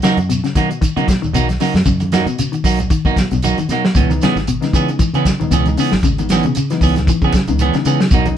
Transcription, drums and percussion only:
0.02 snare medium
0.02 closed hi-hat soft
0.02 high conga medium
0.02 shekere medium
0.17 closed hi-hat soft
0.17 shekere soft
0.30 closed hi-hat medium
0.30 high conga soft
0.30 shekere medium
0.44 snare soft
0.44 closed hi-hat soft
0.44 shekere soft
0.55 kick medium
0.55 snare soft
0.55 closed hi-hat soft
0.55 shekere medium
0.71 closed hi-hat soft
0.71 shekere soft
0.82 kick medium
0.82 closed hi-hat medium
0.82 shekere medium
0.97 closed hi-hat soft
0.97 shekere soft
1.08 kick medium
1.08 snare medium
1.08 closed hi-hat soft
1.08 high conga medium
1.08 shekere medium
1.23 low conga medium
1.23 shekere soft
1.34 closed hi-hat medium
1.34 high conga medium
1.34 shekere medium
1.49 snare soft
1.49 closed hi-hat soft
1.49 high conga medium
1.49 shekere soft
1.60 snare soft
1.60 open hi-hat medium
1.60 shekere medium
1.75 snare medium
1.75 shekere soft
1.86 kick medium
1.86 closed hi-hat medium
1.86 high conga soft
1.86 low conga medium
1.86 shekere medium
2.00 closed hi-hat soft
2.00 high conga medium
2.00 shekere soft
2.12 snare medium
2.12 closed hi-hat soft
2.12 high conga medium
2.12 shekere medium
2.27 closed hi-hat soft
2.27 shekere soft
2.38 closed hi-hat medium
2.38 high conga soft
2.38 shekere medium
2.53 closed hi-hat soft
2.53 shekere soft
2.64 kick medium
2.64 open hi-hat medium
2.64 shekere medium
2.79 closed hi-hat soft
2.79 low conga medium
2.79 shekere soft
2.90 kick medium
2.90 closed hi-hat medium
2.90 shekere medium
3.05 kick medium
3.05 shekere soft
3.16 kick medium
3.16 snare medium
3.16 closed hi-hat soft
3.16 high conga medium
3.16 shekere medium
3.31 closed hi-hat soft
3.31 low conga medium
3.31 shekere soft
3.42 closed hi-hat medium
3.42 high conga medium
3.42 shekere medium
3.58 closed hi-hat soft
3.58 high conga medium
3.58 shekere soft
3.69 snare soft
3.69 closed hi-hat soft
3.69 shekere medium
3.84 snare medium
3.84 shekere soft
3.94 kick medium
3.94 closed hi-hat medium
3.94 shekere medium
3.99 high conga soft
3.99 low conga medium
4.10 closed hi-hat soft
4.10 high conga medium
4.10 shekere soft
4.21 snare medium
4.21 closed hi-hat soft
4.21 high conga medium
4.21 shekere medium
4.36 snare soft
4.36 closed hi-hat soft
4.36 shekere soft
4.47 closed hi-hat medium
4.47 high conga soft
4.47 shekere medium
4.62 snare soft
4.62 closed hi-hat soft
4.62 shekere soft
4.73 kick medium
4.73 closed hi-hat soft
4.73 shekere medium
4.88 closed hi-hat soft
4.88 shekere soft
4.99 kick medium
4.99 closed hi-hat medium
4.99 shekere medium
5.14 closed hi-hat soft
5.14 shekere soft
5.25 kick medium
5.25 snare medium
5.25 closed hi-hat soft
5.25 high conga medium
5.25 shekere medium
5.41 low conga medium
5.41 shekere soft
5.51 closed hi-hat medium
5.51 high conga medium
5.51 shekere medium
5.66 closed hi-hat soft
5.66 high conga medium
5.66 shekere soft
5.77 open hi-hat medium
5.77 shekere medium
5.92 snare medium
5.92 shekere soft
6.03 kick medium
6.03 closed hi-hat medium
6.03 high conga soft
6.03 low conga medium
6.03 shekere medium
6.18 closed hi-hat soft
6.18 high conga medium
6.18 shekere soft
6.29 snare medium
6.29 closed hi-hat soft
6.29 high conga medium
6.29 shekere medium
6.43 closed hi-hat soft
6.43 shekere soft
6.55 closed hi-hat medium
6.55 high conga soft
6.55 shekere medium
6.70 snare soft
6.70 closed hi-hat soft
6.70 shekere soft
6.81 kick medium
6.81 open hi-hat medium
6.81 shekere medium
6.96 snare soft
6.96 closed hi-hat soft
6.96 low conga medium
6.96 shekere soft
7.07 kick medium
7.07 closed hi-hat medium
7.07 shekere medium
7.22 kick medium
7.22 shekere soft
7.33 kick medium
7.33 snare medium
7.33 closed hi-hat soft
7.33 high conga medium
7.33 shekere medium
7.48 closed hi-hat soft
7.48 low conga medium
7.48 shekere soft
7.59 closed hi-hat medium
7.59 high conga medium
7.59 shekere medium
7.74 snare soft
7.74 closed hi-hat soft
7.74 shekere soft
7.85 closed hi-hat soft
7.85 shekere medium
8.00 snare medium
8.00 shekere soft
8.11 kick medium
8.11 closed hi-hat medium
8.11 high conga soft
8.11 low conga medium
8.11 shekere medium
8.26 closed hi-hat soft
8.26 high conga medium
8.26 shekere soft

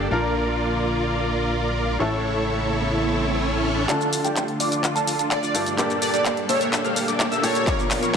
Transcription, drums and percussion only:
3.89 clap soft
3.89 closed hi-hat medium
3.89 shaker soft
4.01 closed hi-hat soft
4.01 shaker soft
4.13 open hi-hat loud
4.13 shaker medium
4.25 closed hi-hat medium
4.25 shaker soft
4.36 clap soft
4.36 closed hi-hat medium
4.36 shaker soft
4.48 closed hi-hat soft
4.60 open hi-hat loud
4.60 shaker medium
4.72 closed hi-hat medium
4.72 shaker soft
4.84 clap medium
4.84 closed hi-hat medium
4.84 shaker soft
4.96 closed hi-hat soft
4.96 shaker soft
5.07 open hi-hat loud
5.07 shaker medium
5.19 closed hi-hat medium
5.19 shaker soft
5.31 clap medium
5.31 closed hi-hat medium
5.31 shaker soft
5.43 closed hi-hat soft
5.43 shaker soft
5.55 open hi-hat loud
5.55 shaker medium
5.66 closed hi-hat medium
5.66 shaker soft
5.78 clap medium
5.78 closed hi-hat medium
5.78 shaker soft
5.90 closed hi-hat soft
5.90 shaker soft
6.02 open hi-hat loud
6.02 shaker medium
6.14 closed hi-hat medium
6.14 shaker soft
6.25 clap medium
6.25 closed hi-hat medium
6.25 shaker soft
6.37 closed hi-hat soft
6.49 open hi-hat loud
6.49 shaker medium
6.61 closed hi-hat medium
6.61 shaker soft
6.73 clap medium
6.73 closed hi-hat medium
6.73 shaker soft
6.85 closed hi-hat soft
6.85 shaker soft
6.96 open hi-hat loud
6.96 shaker medium
7.08 closed hi-hat medium
7.08 shaker soft
7.20 clap medium
7.20 closed hi-hat medium
7.20 shaker soft
7.32 closed hi-hat soft
7.32 shaker soft
7.44 open hi-hat loud
7.44 shaker medium
7.55 closed hi-hat medium
7.55 shaker soft
7.67 kick loud
7.67 clap medium
7.67 closed hi-hat soft
7.67 shaker soft
7.79 closed hi-hat soft
7.79 shaker soft
7.91 clap medium
7.91 open hi-hat loud
7.91 shaker medium
8.03 closed hi-hat medium
8.03 shaker soft

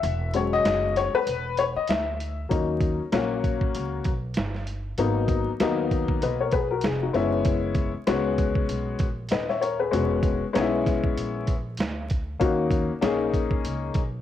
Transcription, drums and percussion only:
0.03 closed hi-hat loud
0.34 closed hi-hat medium
0.65 snare loud
0.65 closed hi-hat loud
0.96 snare soft
0.96 closed hi-hat medium
1.27 closed hi-hat loud
1.57 closed hi-hat medium
1.87 snare loud
1.87 closed hi-hat medium
2.20 closed hi-hat medium
2.51 kick loud
2.51 closed hi-hat loud
2.80 kick medium
2.80 closed hi-hat medium
3.12 snare loud
3.12 closed hi-hat loud
3.44 kick medium
3.44 closed hi-hat medium
3.61 kick medium
3.74 closed hi-hat loud
4.04 kick medium
4.04 closed hi-hat medium
4.34 snare loud
4.34 closed hi-hat medium
4.55 snare soft
4.67 closed hi-hat medium
4.98 closed hi-hat medium
5.28 kick medium
5.28 closed hi-hat medium
5.60 snare loud
5.60 closed hi-hat loud
5.91 kick medium
5.91 closed hi-hat medium
6.08 kick medium
6.22 closed hi-hat loud
6.51 kick medium
6.51 closed hi-hat medium
6.81 snare loud
6.81 closed hi-hat medium
7.14 closed hi-hat medium
7.45 kick loud
7.45 closed hi-hat medium
7.75 kick medium
7.75 closed hi-hat medium
8.07 snare loud
8.07 closed hi-hat medium
8.38 kick medium
8.38 closed hi-hat medium
8.55 kick medium
8.69 closed hi-hat loud
8.99 kick medium
8.99 closed hi-hat medium
9.29 snare loud
9.29 closed hi-hat medium
9.49 snare soft
9.62 closed hi-hat medium
9.93 closed hi-hat medium
10.23 kick loud
10.23 closed hi-hat medium
10.55 snare loud
10.55 closed hi-hat loud
10.86 kick medium
10.86 snare soft
10.86 closed hi-hat medium
11.03 kick medium
11.17 closed hi-hat loud
11.47 kick medium
11.47 closed hi-hat medium
11.77 snare loud
11.77 closed hi-hat medium
12.10 kick medium
12.10 closed hi-hat medium
12.41 kick loud
12.41 closed hi-hat medium
12.71 kick loud
12.71 closed hi-hat medium
13.02 snare loud
13.02 closed hi-hat medium
13.34 kick medium
13.34 closed hi-hat medium
13.51 kick medium
13.65 closed hi-hat loud
13.94 kick medium
13.94 closed hi-hat medium

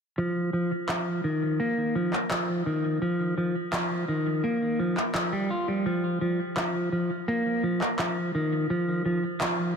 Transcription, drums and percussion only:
0.89 clap loud
2.13 clap soft
2.31 clap loud
3.73 clap loud
4.97 clap soft
5.15 clap loud
6.57 clap loud
7.81 clap soft
7.99 clap loud
9.41 clap loud

